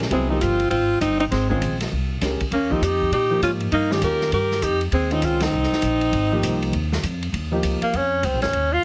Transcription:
0.02 snare soft
0.10 0.40 C2 medium
0.10 0.28 F#3 medium
0.10 0.32 G#3 medium
0.10 0.28 B3 medium
0.10 0.31 C4 medium
0.10 0.28 E4 medium
0.10 0.29 G#4 medium
0.10 ride medium
0.29 0.56 F3 medium
0.29 0.56 A#3 medium
0.29 0.40 C4 medium
0.29 0.42 D#4 medium
0.29 0.57 D#4 soft
0.29 0.57 G4 medium
0.40 0.70 G1 medium
0.40 0.70 C4 medium
0.40 0.70 F4 medium
0.40 hi-hat pedal soft
0.40 ride medium
0.60 ride soft
0.70 1.00 G#1 medium
0.70 0.99 C4 medium
0.70 0.99 F4 loud
0.70 ride medium
1.01 1.30 G1 medium
1.01 1.19 C4 medium
1.01 1.19 D#4 medium
1.01 hi-hat pedal medium
1.01 ride medium
1.19 1.25 C4 medium
1.19 1.25 D#4 medium
1.19 ride soft
1.31 1.61 G#1 medium
1.31 1.49 G#3 medium
1.31 1.49 C4 medium
1.31 snare soft
1.31 ride medium
1.49 1.60 D#3 medium
1.49 1.78 G#3 medium
1.49 1.60 G#3 medium
1.49 1.78 C4 medium
1.49 1.60 C#4 medium
1.49 1.61 F4 medium
1.49 kick soft
1.61 1.91 A#1 medium
1.61 hi-hat pedal soft
1.61 ride medium
1.80 snare soft
1.80 ride medium
1.91 2.21 C2 medium
2.21 2.39 C#2 medium
2.21 2.39 G#3 soft
2.21 2.39 C#4 soft
2.21 2.39 G4 soft
2.21 2.39 A#4 medium
2.21 snare soft
2.21 hi-hat pedal medium
2.21 ride medium
2.40 muted upright bass stroke soft
2.40 kick medium
2.40 ride soft
2.51 2.80 D#2 medium
2.51 2.73 A#3 medium
2.51 2.74 C#4 medium
2.51 ride medium
2.70 2.81 F3 medium
2.70 2.81 A#3 medium
2.70 2.85 C4 medium
2.70 2.81 D#4 medium
2.70 2.85 D#4 medium
2.70 2.81 G4 medium
2.70 kick soft
2.81 3.10 F2 medium
2.81 3.12 D#4 medium
2.81 3.13 G4 medium
2.81 hi-hat pedal medium
2.81 ride medium
3.01 kick soft
3.11 3.41 A#2 medium
3.11 3.40 D#4 medium
3.11 3.41 G4 medium
3.11 ride medium
3.30 3.70 F3 medium
3.30 3.70 A#3 medium
3.30 3.70 D#4 medium
3.30 3.70 G4 medium
3.42 3.71 G#2 medium
3.42 3.51 C#4 medium
3.42 3.51 F4 medium
3.42 hi-hat pedal medium
3.42 ride medium
3.60 ride soft
3.71 4.01 G2 medium
3.71 3.94 A#3 medium
3.71 3.94 D#4 medium
3.71 ride medium
3.90 4.30 D#3 medium
3.90 4.30 G#3 medium
3.90 4.30 C#4 medium
3.90 4.03 D#4 medium
3.90 4.31 F4 medium
3.90 4.03 G4 medium
3.90 snare soft
4.01 4.31 D#2 medium
4.01 4.31 G4 medium
4.01 4.31 A#4 loud
4.01 hi-hat pedal medium
4.01 ride medium
4.21 snare soft
4.32 4.61 G2 medium
4.32 4.65 G4 medium
4.32 4.65 A#4 medium
4.32 ride medium
4.51 snare soft
4.62 4.91 F2 medium
4.62 4.81 D#4 medium
4.62 4.82 G4 medium
4.62 hi-hat pedal medium
4.62 ride medium
4.81 ride soft
4.91 5.21 D#2 medium
4.91 5.13 G#3 medium
4.91 5.14 C4 medium
4.91 ride medium
5.11 5.51 D#3 medium
5.11 5.51 G#3 soft
5.11 5.23 C4 medium
5.11 5.51 C#4 soft
5.11 5.26 D#4 medium
5.11 5.51 F4 medium
5.11 ride soft
5.22 5.51 C#2 medium
5.22 5.42 C4 medium
5.22 5.44 F4 medium
5.22 hi-hat pedal medium
5.22 ride medium
5.40 7.04 C4 medium
5.40 7.04 D#4 medium
5.40 snare medium
5.40 ride medium
5.52 5.70 C2 medium
5.63 snare soft
5.71 muted upright bass stroke soft
5.71 snare soft
5.82 6.12 A#1 medium
5.82 hi-hat pedal medium
5.82 ride medium
6.01 ride soft
6.12 6.42 G#1 medium
6.12 ride medium
6.32 6.71 F3 medium
6.32 6.71 A#3 medium
6.32 6.71 D#4 medium
6.32 6.71 G4 medium
6.42 6.72 C2 medium
6.42 hi-hat pedal medium
6.42 ride medium
6.62 ride soft
6.72 7.02 D#2 medium
6.72 ride medium
6.92 snare medium
7.02 7.32 F2 medium
7.02 hi-hat pedal medium
7.02 ride medium
7.23 ride soft
7.32 7.62 D#2 medium
7.32 ride medium
7.51 7.91 F3 medium
7.51 7.91 A#3 medium
7.51 7.92 D#4 medium
7.51 7.92 G4 medium
7.62 7.80 C#2 medium
7.62 hi-hat pedal medium
7.62 ride medium
7.81 7.98 A#3 medium
7.81 muted upright bass stroke soft
7.81 ride soft
7.93 8.22 F2 medium
7.93 8.27 C#4 medium
7.93 ride medium
8.23 8.33 C#2 medium
8.23 8.42 C4 medium
8.23 hi-hat pedal soft
8.23 ride medium
8.33 8.43 A#1 medium
8.42 8.52 G1 medium
8.42 8.74 C#4 medium
8.42 snare soft
8.42 ride soft
8.53 8.82 D#2 medium
8.53 ride medium
8.73 8.84 F4 loud

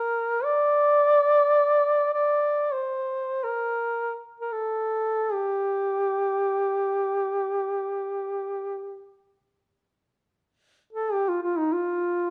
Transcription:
0.00 0.45 A#4 medium
0.44 2.13 D5 medium
2.14 2.74 D5 medium
2.73 3.45 C5 medium
3.44 4.17 A#4 medium
4.41 4.54 A#4 soft
4.52 5.35 A4 medium
5.33 9.09 G4 medium
10.93 11.14 A4 medium
11.13 11.30 G4 medium
11.29 11.41 F4 medium
11.42 11.60 F4 medium
11.58 11.75 D#4 medium
11.73 12.30 F4 medium

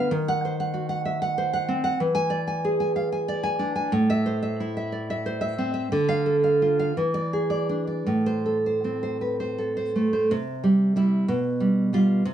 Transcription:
0.00 0.11 B3 medium
0.00 0.12 B4 medium
0.00 0.11 F5 medium
0.11 1.95 D#3 medium
0.28 0.52 F#5 medium
0.45 1.37 C5 medium
0.60 0.88 F#5 medium
0.74 1.67 F#4 medium
0.89 1.05 F#5 medium
1.05 1.21 E5 medium
1.22 1.52 F#5 medium
1.38 2.00 C5 medium
1.53 1.83 F#5 medium
1.68 1.99 C4 medium
1.84 1.99 F#5 medium
2.00 3.88 E3 medium
2.15 2.40 G#5 medium
2.30 3.26 D5 medium
2.47 2.79 G#5 medium
2.65 3.59 G#4 medium
2.80 2.95 G#5 medium
2.96 3.12 F5 medium
3.12 3.42 G#5 medium
3.28 3.92 D5 medium
3.43 3.74 G#5 medium
3.59 3.92 D4 medium
3.76 3.92 G#5 medium
3.92 5.87 A2 medium
4.10 4.36 E5 medium
4.26 5.24 C5 medium
4.43 4.76 E5 medium
4.60 5.58 E4 medium
4.77 5.09 E5 medium
4.92 5.91 D5 medium
5.10 5.40 E5 medium
5.26 5.91 C5 medium
5.41 5.72 E5 medium
5.58 5.91 C4 medium
5.74 5.90 E5 medium
5.92 6.92 D3 medium
6.09 6.35 F5 medium
6.26 6.95 A4 medium
6.44 6.78 F5 medium
6.62 6.95 F4 medium
6.79 6.95 F5 medium
6.97 8.03 E3 medium
7.14 7.41 D5 medium
7.33 8.07 G#4 medium
7.50 7.86 D5 medium
7.69 8.06 D4 medium
7.87 8.06 D5 medium
8.07 10.28 A2 medium
8.26 8.57 C5 medium
8.46 9.57 A4 soft
8.66 9.02 C5 medium
8.84 9.95 C4 soft
9.03 9.21 C5 medium
9.21 9.39 B4 soft
9.40 9.75 C5 soft
9.58 10.31 A4 medium
9.77 10.12 C5 medium
9.96 10.31 A3 medium
10.13 10.31 C5 medium
10.31 11.26 C3 medium
10.64 10.95 G3 medium
10.96 11.25 G3 medium
10.96 11.26 E4 medium
11.28 12.22 B2 medium
11.60 11.92 G3 medium
11.93 12.22 G3 medium
11.93 12.22 F4 medium
12.25 12.34 C3 medium

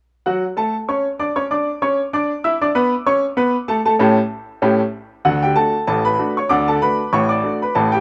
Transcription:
0.26 0.44 F#3 medium
0.26 0.43 F#4 medium
0.26 0.43 F#5 medium
0.57 0.74 A3 medium
0.57 0.74 A4 medium
0.57 0.74 A5 medium
0.89 1.06 C#4 medium
0.89 1.06 C#5 medium
0.89 1.06 C#6 medium
1.19 1.29 D4 medium
1.19 1.29 D5 medium
1.19 1.29 D6 medium
1.36 1.44 C#4 medium
1.36 1.44 C#5 medium
1.36 1.44 C#6 medium
1.51 1.68 D4 medium
1.51 1.68 D5 medium
1.51 1.68 D6 medium
1.82 1.99 C#4 medium
1.82 1.99 C#5 medium
1.82 1.99 C#6 medium
2.13 2.30 D4 medium
2.13 2.31 D5 medium
2.13 2.31 D6 medium
2.44 2.54 E4 medium
2.44 2.54 E5 medium
2.44 2.54 E6 medium
2.61 2.69 D4 medium
2.61 2.69 D5 medium
2.61 2.69 D6 medium
2.75 2.92 B3 medium
2.75 2.93 B4 medium
2.75 2.92 B5 medium
3.06 3.24 C#4 medium
3.06 3.24 C#5 medium
3.06 3.24 C#6 medium
3.37 3.54 B3 medium
3.37 3.55 B4 medium
3.37 3.54 B5 medium
3.68 3.78 A3 medium
3.68 3.78 A4 medium
3.68 3.78 A5 medium
3.85 3.93 A3 medium
3.85 3.94 A4 medium
3.85 3.93 A5 medium
3.99 4.17 A2 medium
3.99 4.17 A3 medium
3.99 4.17 C#4 medium
3.99 4.17 G4 medium
4.62 4.80 A2 medium
4.62 4.80 A3 medium
4.62 4.79 C#4 medium
4.62 4.80 G4 medium
5.25 5.52 D2 medium
5.25 5.52 D3 medium
5.25 5.42 F#4 medium
5.25 5.43 F#5 medium
5.43 5.56 G4 medium
5.43 5.57 G5 medium
5.56 5.73 A3 soft
5.56 5.74 D4 soft
5.56 5.74 F#4 soft
5.56 5.86 A4 medium
5.56 5.81 A5 medium
5.87 6.14 A1 medium
5.87 6.14 A2 medium
5.87 6.04 A4 medium
5.87 6.05 A5 medium
6.05 6.35 B4 medium
6.05 6.30 B5 medium
6.19 6.36 A3 soft
6.19 6.36 D4 soft
6.19 6.36 F#4 soft
6.37 6.51 C#5 medium
6.37 6.51 C#6 medium
6.49 6.77 D2 medium
6.49 6.77 D3 medium
6.49 6.67 D5 medium
6.49 6.67 D6 loud
6.68 6.81 A4 medium
6.68 6.82 A5 medium
6.82 6.99 A3 soft
6.82 6.99 D4 soft
6.82 7.00 F#4 soft
6.82 7.12 B4 medium
6.82 7.11 B5 medium
7.13 7.39 A1 medium
7.13 7.40 A2 medium
7.13 7.29 C#5 medium
7.13 7.30 C#6 medium
7.29 7.59 D5 medium
7.29 7.54 D6 medium
7.44 7.61 A3 soft
7.44 7.61 D4 soft
7.44 7.61 F#4 soft
7.62 7.75 B4 medium
7.62 7.76 B5 medium
7.75 8.00 A1 medium
7.75 8.00 A2 medium
7.75 7.92 A4 medium
7.75 7.92 A5 medium
7.92 8.00 G4 medium
7.92 8.00 G5 medium

